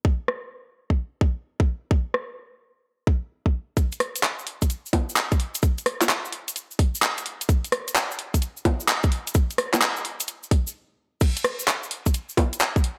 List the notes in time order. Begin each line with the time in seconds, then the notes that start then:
0.05 kick
0.28 cross-stick
0.90 kick
1.21 kick
1.60 kick
1.91 kick
2.14 cross-stick
3.07 kick
3.46 kick
3.77 kick, closed hi-hat, cabasa
3.92 closed hi-hat, cabasa
4.00 cross-stick, open hi-hat
4.16 closed hi-hat, cabasa
4.23 clap, cabasa
4.39 cabasa
4.47 open hi-hat
4.62 kick, closed hi-hat, cabasa
4.70 closed hi-hat, cabasa
4.86 cabasa
4.93 kick, open hi-hat, high bongo
5.09 cabasa
5.16 clap, cabasa
5.32 kick, closed hi-hat, cabasa
5.40 open hi-hat
5.55 closed hi-hat, cabasa
5.62 kick, closed hi-hat, cabasa
5.78 closed hi-hat, cabasa
5.86 cross-stick, open hi-hat
6.01 clap, closed hi-hat, high bongo, cabasa
6.09 clap, cabasa
6.25 cabasa
6.33 open hi-hat
6.48 closed hi-hat, cabasa
6.56 closed hi-hat, cabasa
6.71 cabasa
6.79 kick, open hi-hat
6.95 cabasa
7.02 clap, cabasa
7.18 closed hi-hat, cabasa
7.26 open hi-hat
7.41 closed hi-hat, cabasa
7.49 kick, closed hi-hat, cabasa
7.64 closed hi-hat, cabasa
7.72 cross-stick, open hi-hat
7.88 closed hi-hat, cabasa
7.96 clap, cabasa
8.11 cabasa
8.19 open hi-hat
8.34 kick, closed hi-hat, cabasa
8.42 closed hi-hat, cabasa
8.57 cabasa
8.65 kick, open hi-hat, high bongo
8.80 cabasa
8.88 clap, cabasa
9.03 kick, closed hi-hat, cabasa
9.12 open hi-hat
9.27 closed hi-hat, cabasa
9.34 kick, closed hi-hat, cabasa
9.50 closed hi-hat, cabasa
9.58 cross-stick, open hi-hat
9.74 clap, closed hi-hat, high bongo, cabasa
9.82 clap, cabasa
9.96 cabasa
10.05 open hi-hat
10.20 closed hi-hat, cabasa
10.28 closed hi-hat, cabasa
10.43 cabasa
10.51 kick, open hi-hat
10.67 cabasa
11.21 kick, closed hi-hat, crash, cabasa
11.37 closed hi-hat, cabasa
11.44 cross-stick, open hi-hat
11.59 cabasa
11.68 clap, closed hi-hat, cabasa
11.83 cabasa
11.91 open hi-hat
12.06 kick, closed hi-hat, cabasa
12.14 closed hi-hat, cabasa
12.29 cabasa
12.37 kick, open hi-hat, high bongo
12.53 closed hi-hat, cabasa
12.60 clap, closed hi-hat, cabasa
12.76 kick, cabasa
12.84 open hi-hat